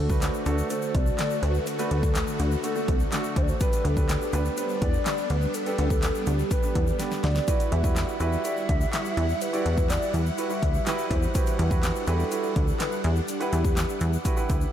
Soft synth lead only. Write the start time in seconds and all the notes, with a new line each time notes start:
0.00 A4
0.47 B4
0.71 C5
0.95 D5
1.43 B4
1.67 A4
2.40 F#4
2.64 A4
3.37 C5
3.42 D5
3.49 C5
3.61 B4
3.85 A4
4.34 B4
4.58 C5
4.82 D5
5.30 B4
5.55 A4
6.27 G4
6.51 B4
7.24 D5
7.72 E5
8.21 E5
9.41 B4
9.90 D5
10.14 E5
11.11 C5
11.59 B4
12.08 A4
12.80 B4
13.05 G4